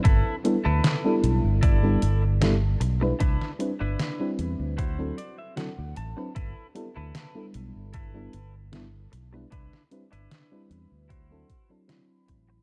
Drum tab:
HH |x-x-x-x-x-x-x-x-|x-x-x-x-x-x-x-x-|x-x-x-x-x-x-x-x-|x-xxx-x-x-x-x-x-|
SD |----o-------o---|-o--o-------o---|----o-------o---|-o--o-------o---|
BD |o-------o-------|o-------o-------|o-------o-------|o-------o-o---o-|